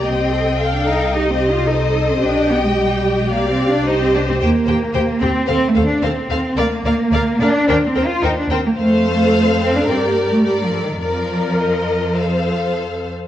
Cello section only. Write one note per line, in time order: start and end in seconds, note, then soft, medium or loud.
0.05 0.73 C4 medium
0.74 0.87 D4 medium
0.86 1.13 D#4 medium
1.14 1.31 D#4 medium
1.33 1.50 C4 medium
1.51 1.68 F4 medium
1.68 2.08 D#4 medium
2.09 2.22 C4 medium
2.21 2.49 D4 medium
2.50 2.63 B3 medium
2.64 2.69 G#3 medium
2.76 3.16 G3 medium
3.18 3.31 G#3 medium
3.31 3.49 A#3 medium
3.51 3.68 C4 medium
3.69 3.87 D4 medium
3.86 4.00 D#4 medium
4.01 4.06 C4 loud
4.14 4.20 D4 medium
4.29 4.34 C4 medium
4.41 5.21 A#3 loud
5.22 5.48 C4 loud
5.49 5.66 C4 loud
5.68 5.85 A3 loud
5.86 6.03 D4 medium
6.03 6.58 C4 medium
6.57 7.40 A#3 loud
7.40 7.67 D4 loud
7.68 7.75 D4 loud
7.87 8.05 C4 medium
8.06 8.23 F4 loud
8.23 8.37 D#4 medium
8.37 8.50 D4 medium
8.51 8.56 C4 loud
8.66 8.71 A#3 medium
8.78 9.59 A3 medium
9.61 9.74 C4 medium
9.76 9.89 D4 medium
9.88 9.96 C4 medium
10.08 10.16 A#3 medium
10.31 10.45 A3 medium
10.44 10.63 G3 medium
10.64 10.83 F3 medium
10.84 11.03 D#3 medium
11.02 12.72 F3 medium